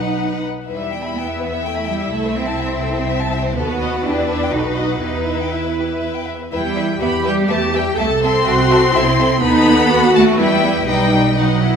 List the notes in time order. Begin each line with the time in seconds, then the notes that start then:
Already playing: B1 F#3 D#4 B4 F#5
0.67 E2 G3 E4 B4 E5
0.80 E5
0.92 G5
1.04 B5
1.16 B3 G5
1.28 E5
1.40 B4
1.53 E5
1.65 A3 G5
1.77 B5
1.88 G3 G5
1.99 E5
2.11 C2 A3 A4
2.24 C5
2.36 C4 E5
2.48 A5
2.60 E5
2.71 C5
2.83 A4
2.95 C5
3.09 E5
3.20 A5
3.31 E5
3.44 C5
3.56 D#2 B3 F#4 A4 B4
3.70 B4
3.82 D#5
3.94 F#5
4.04 E2 D4 E4 G4
4.18 B4
4.30 E5
4.43 G5
4.52 B1 D#4 F#4 A4
4.67 B4
4.79 D#5
4.91 F#5
5.01 E2 D#4 E4 G4
5.15 B4
5.28 E5
5.41 G5
5.52 E4 E5
5.65 B4
5.78 G4
5.91 B4
6.02 E5
6.15 G5
6.27 E5
6.40 B4
6.52 E2 G3 E4 B4 E5 G5
6.77 B4 E5
7.01 E2 B3 G4 B4 E5 B5
7.24 G3 B4 E5 G5
7.49 E2 A3 B4 E5 A5
7.74 G3 B4 E5 G5
7.98 C2 A3 A4 E5 A5
8.22 C4 A4 E5 C6
8.46 C2 F#4 A4 E5
8.72 A4 E5
8.94 C2 E4 A4 E5
9.19 A4 E5
9.41 D#2 B3 D#4 A4 F#5 B5
9.90 F#4
10.14 A3 A5
10.38 E2 G3 E4 B4 E5 G5
10.87 B1 G3 D#4 B4 D#5 G5
11.36 F#3 D#4 B4 D#5 F#5
11.62 E4